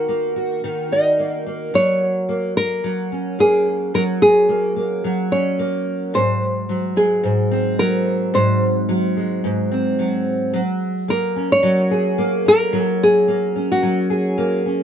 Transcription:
Already playing: D#3 D#4 F#4 A#4
0.08 A#3
0.36 F#4
0.64 D#3
0.91 D#4 D#5
1.19 A#3
1.46 A#3
1.74 F#3 C#5
2.29 A#3
2.57 A#3 A#4
2.84 F#3
3.12 C#4
3.39 A#3 G#4
3.94 F#3 A#4
4.22 G#4
4.49 A#3
4.76 A#3
5.04 F#3
5.31 C#4 C#5
5.59 A#3
6.14 G#2 C5
6.69 F#3
6.96 G#3 G#4
7.23 G#2
7.51 C4
7.79 F#3 A#4
8.34 G#2 C5
8.89 F#3
9.17 G#3
9.44 G#2
9.71 C4
9.99 F#3
10.53 F#3
11.08 A#3 A#4
11.36 C#4
11.52 C#5
11.63 F#3
11.91 G#4
12.18 A#3
12.46 C#4 A#4
12.73 F#3
13.03 G#4
13.28 A#3
13.56 C#4
13.72 F#4
13.83 F#3
14.10 G#4
14.38 A#3
14.66 C#4

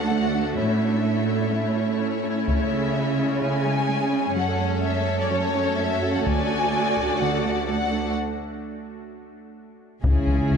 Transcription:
Already playing: D2 A3 D4 F#4 A4 F#5
0.11 A3
0.35 D4
0.58 A2 A3 C#4 E4 C#5 E5
1.53 A3
1.76 E4
2.00 E4
2.23 A4
2.47 C#3 G#3 G#4 C#5 E5, taiko
3.42 C#3 G#5
3.66 G#3
3.89 G#3
4.13 C#4
4.36 F#2 F#3 A3 C#4 F#4 A4 C#5 F#5
4.84 E5
5.20 D5
5.30 F#3 C#5
5.55 C#4
5.78 C#4 E5
6.02 F#4
6.15 F#5
6.25 D2 D3 D4 F#4 A4 D5 G#5, taiko
6.97 taiko
7.19 D3 F#5
7.46 A3
7.67 A3 F#5
7.93 D4
10.04 C#2 C#3 G#3 C#4 E4 G#4 E5, taiko
10.27 C#2 E3
10.51 C#2

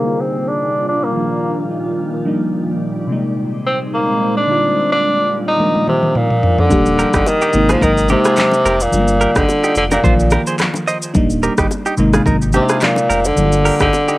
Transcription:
Already playing: A#3
0.01 A#2 D3 G3 A#3 D4 F4
0.06 F4
0.20 C4
0.48 D4
0.88 D4
1.03 A#3
1.13 D#3 F3 A#3
1.18 D#4
1.24 F4
1.71 D#4
1.86 F4
2.14 A#4
2.25 G3 A#3 D4 D#4
3.07 C3 G#3 A#3 C4 D#4
3.12 D#4
3.66 C4
3.94 A#3
4.37 D4
4.46 A#2 D3 G3 A#3 D4 F4
4.51 F4
4.92 D4
5.48 D#4
5.57 D#3 F3 A#3 D#4, high tom
5.62 F4
5.75 high tom
5.88 C3, mid tom
6.03 mid tom
6.15 A#2, mid tom
6.30 mid tom
6.43 floor tom
6.58 D3, floor tom
6.69 D#1 G3 A#3 D4 G4, kick, low conga, shaker
6.86 shaker
6.99 G4 A#4, shaker
7.14 G1 D3 D#4 G4, kick, cross-stick, shaker
7.26 D#3, high bongo, shaker
7.42 D#4 G4, shaker
7.53 G#1 C3 G#3 A#3 D#4, shaker
7.69 F3 F4 G#4, cross-stick, high bongo, low bongo, shaker
7.81 G#1 D#3 D#4 A#4, kick, low conga, shaker
7.97 shaker
8.08 C3 G#3 A#3 D#4 G4, high bongo, low bongo, shaker
8.25 F4 G#4, cross-stick, shaker
8.36 clap, high bongo, low conga, shaker
8.51 low bongo, shaker
8.65 F1 G4 A#4, shaker
8.80 A#2, shaker
8.91 G1 D3 G3 G#3 F4, low conga, shaker
9.00 A#3
9.08 shaker
9.21 G4 A#4, shaker
9.36 G1 D3 D#4 G4, kick, cross-stick, shaker
9.49 high bongo, shaker
9.64 D#4 G4, shaker
9.75 F1 D3, shaker
9.91 A#2 G4 A#4, high bongo, low bongo, shaker
10.03 A#1 D#3 F3 A#3 F4 C5, kick, low conga, shaker
10.20 shaker
10.30 D#3 F3 A#3 F4 G4 A#4, cross-stick, high bongo, low bongo, shaker
10.47 G#4 C5, shaker
10.59 cross-stick, clap, high bongo, low conga, shaker
10.74 low bongo, shaker
10.88 C5 D#5, shaker
11.02 shaker
11.14 D#1 G3 A#3 D4 D#4, kick, low conga, shaker
11.30 shaker
11.43 G4 A#4, shaker
11.58 G1 D#4 G4, kick, cross-stick, shaker
11.71 high bongo, shaker
11.86 D#4 G4, shaker
11.97 G#1 C3 G#3 A#3 D#4, shaker
12.14 F4 G#4, cross-stick, high bongo, low bongo, shaker
12.26 G#1 D#4 A#4, kick, low conga, shaker
12.42 shaker
12.53 C3 G#3 A#3 D4 D#4 G4, high bongo, low bongo, shaker
12.62 D#4
12.69 F4 G#4, cross-stick, shaker
12.81 A#2, clap, high bongo, low conga, shaker
12.96 low bongo, shaker
13.10 F1 G4 A#4, shaker
13.25 D3, shaker
13.36 G1 D3 G3 A#3 E4, low conga, shaker
13.45 F4
13.52 shaker
13.65 G4 A#4, open hi-hat, shaker
13.80 G1 D3 D#4 G4, kick, cross-stick, shaker
13.93 high bongo, shaker
14.08 D#4 G4, shaker

